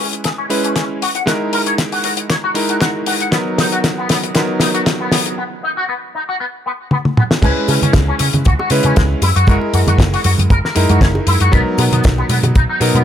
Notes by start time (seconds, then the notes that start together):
Already playing: G#3 C#4 E4 B4
0.13 closed hi-hat
0.24 G#4, kick, snare, closed hi-hat
0.38 C#4
0.49 G#3 C#4 E4 B4, open hi-hat
0.64 C#4, closed hi-hat
0.76 C#4, kick, snare, closed hi-hat
1.02 F#4, open hi-hat
1.15 F#5, closed hi-hat
1.26 G#3 D#4 E4 F#4 A#4, kick, snare, closed hi-hat
1.53 A#4, open hi-hat
1.66 C#5, closed hi-hat
1.78 kick, snare, closed hi-hat
1.92 F#4, open hi-hat
2.04 F#4, open hi-hat
2.17 closed hi-hat
2.30 C#5, kick, snare, closed hi-hat
2.44 F#4
2.54 G#3 D#4 E4 A#4, kick, open hi-hat
2.69 F#4, closed hi-hat
2.81 F#4, kick, snare, closed hi-hat
3.06 F#4, open hi-hat
3.20 F#5, closed hi-hat
3.31 F#3 B3 D#4 A#4, kick, snare, closed hi-hat
3.58 D#4, snare, open hi-hat
3.72 F#4, closed hi-hat
3.84 kick, snare, closed hi-hat
3.98 B3
4.09 B3, snare, open hi-hat
4.23 closed hi-hat
4.34 F#3 B3 D#4 A#4, kick, snare, closed hi-hat
4.60 D#4, snare, open hi-hat
4.74 F#4, closed hi-hat
4.86 kick, snare, closed hi-hat
5.00 B3
5.12 B3, snare, open hi-hat
5.26 closed hi-hat
5.37 B3
5.63 D#4
5.77 F#4
5.89 B3
6.15 D#4
6.29 F#4
6.40 B3
6.66 B3
6.91 B3, high tom
7.05 high tom
7.17 B3, mid tom
7.31 snare
7.42 C#2 G#3 C#4 E4 B4, kick, closed hi-hat, crash, high conga, cabasa
7.68 C#3 C#4, open hi-hat, high bongo, cabasa
7.82 C#3 C#4, closed hi-hat, low conga, cabasa
7.93 C#2, kick, snare, closed hi-hat, high bongo, cabasa
8.08 C#4
8.19 C#3 C#4, open hi-hat, high conga, cabasa
8.33 C#3, closed hi-hat, high bongo, low conga, cabasa
8.45 C#2 F#4, kick, closed hi-hat, cabasa
8.59 F#4, high bongo
8.70 C#3 G#3 C#4 E4 B4, open hi-hat, cabasa
8.83 C#3 C#4, closed hi-hat, high conga, cabasa
8.96 C#2 G#3, kick, snare, closed hi-hat, high bongo, cabasa
9.22 F#2 E4, open hi-hat, high bongo, cabasa
9.36 F#2 F#4, closed hi-hat, cabasa
9.47 F#1 G#3 E4 F#4 A#4 D#5, kick, closed hi-hat, high conga, cabasa
9.61 high bongo
9.74 F#2 F#4, open hi-hat, cabasa
9.87 F#2 F#4, closed hi-hat, high bongo, low conga, cabasa
9.98 F#1, kick, snare, closed hi-hat, cabasa
10.14 F#4, open hi-hat
10.24 F#2 F#4, open hi-hat, high bongo, high conga, cabasa
10.38 F#2, closed hi-hat, low conga, cabasa
10.50 F#1 A#4, kick, closed hi-hat, high bongo, cabasa
10.65 A#4, snare
10.75 F#2 G#3 D#4 E4 A#4, open hi-hat, cabasa
10.89 F#2 F#4, closed hi-hat, high bongo, high conga, cabasa
11.01 F#1 C#4, kick, snare, closed hi-hat, cabasa
11.15 high bongo
11.27 F#2 E4, open hi-hat, cabasa
11.40 F#2 F#4, closed hi-hat, cabasa
11.52 B1 F#3 B3 D#4 A#4, kick, closed hi-hat, high bongo, high conga, cabasa
11.78 B2 B3, open hi-hat, high bongo, cabasa
11.92 B2 B3, closed hi-hat, low conga, cabasa
12.03 B1, kick, snare, closed hi-hat, cabasa
12.18 B3, high bongo
12.29 B2 B3, open hi-hat, high conga, cabasa
12.43 B2, closed hi-hat, high bongo, low conga, cabasa
12.55 B1 D#4, kick, closed hi-hat, cabasa
12.69 D#4
12.80 B2 F#3 B3 D#4 A#4, open hi-hat, high bongo, cabasa
12.94 B2 B3, closed hi-hat, high conga, cabasa